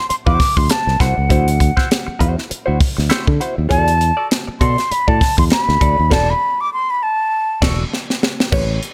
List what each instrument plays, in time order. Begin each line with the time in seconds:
0.09 flute C6, muted clean electric guitar stroke, muted fingered electric bass stroke, closed hi-hat
0.26 fingered electric bass E2, clean electric guitar E4 F#4 C5, flute D6, kick
0.40 kick, snare, open hi-hat
0.57 fingered electric bass D2, flute C6, muted clean electric guitar stroke, kick
0.70 flute A5, muted clean electric guitar stroke, snare, closed hi-hat
0.87 fingered electric bass C2, snare
1.00 fingered electric bass C2, clean electric guitar E4 F#4 C5, flute F#5, kick, snare, closed hi-hat
1.18 fingered electric bass C#2
1.29 fingered electric bass D2, clean electric guitar E4 F#4 C5, kick, closed hi-hat
1.48 closed hi-hat
1.60 muted clean electric guitar stroke, kick, closed hi-hat
1.77 clean electric guitar E4 F#4 C5, kick, snare
1.90 muted clean electric guitar stroke, snare, closed hi-hat
2.07 muted clean electric guitar stroke, muted fingered electric bass stroke
2.19 fingered electric bass E2, clean electric guitar E4 F#4 C5, kick, closed hi-hat
2.37 muted clean electric guitar stroke, snare
2.49 muted clean electric guitar stroke, muted fingered electric bass stroke, closed hi-hat
2.66 fingered electric bass D2, clean electric guitar E4 F#4 C5
2.81 kick, open hi-hat
2.97 fingered electric bass D2, muted clean electric guitar stroke, snare
3.10 clean electric guitar E4 F#4 C5, snare, closed hi-hat
3.27 fingered electric bass D3, kick
3.40 clean electric guitar E4 F#4 C5, closed hi-hat
3.56 fingered electric bass D#2, muted clean electric guitar stroke
3.69 fingered electric bass E2, clean electric guitar F#4 A4 D5, flute A5, kick, closed hi-hat
3.88 closed hi-hat
4.00 muted clean electric guitar stroke, closed hi-hat
4.17 clean electric guitar F#4 A4 D5
4.31 muted clean electric guitar stroke, snare, closed hi-hat
4.47 muted clean electric guitar stroke, muted fingered electric bass stroke
4.60 fingered electric bass B2, clean electric guitar F#4 A4 D5, flute C6, kick, closed hi-hat
4.78 muted clean electric guitar stroke, snare, closed hi-hat
4.91 flute B5, muted clean electric guitar stroke, muted fingered electric bass stroke, closed hi-hat
5.08 fingered electric bass A2, clean electric guitar F#4 A4 D5, flute A5, kick
5.21 muted clean electric guitar stroke, kick, snare, open hi-hat
5.37 fingered electric bass E2, flute C6, muted clean electric guitar stroke, kick
5.50 flute B5, muted clean electric guitar stroke, snare, closed hi-hat
5.69 fingered electric bass D2, snare
5.81 fingered electric bass D2, clean electric guitar F#4 A4 D5, kick, closed hi-hat
5.99 fingered electric bass D#2
6.10 fingered electric bass E1, clean electric guitar F#4 A4 D5, flute A5, kick, snare, crash
6.30 flute B5
6.61 flute D6
6.73 flute C6
6.90 flute B5
7.03 flute A5
7.62 fingered electric bass E1, clean electric guitar F#4 A4 D5, kick, snare, crash
7.93 snare
8.10 snare
8.23 snare
8.40 snare
8.52 fingered electric bass A1, clean electric guitar G4 B4 C#5, kick, crash
8.83 closed hi-hat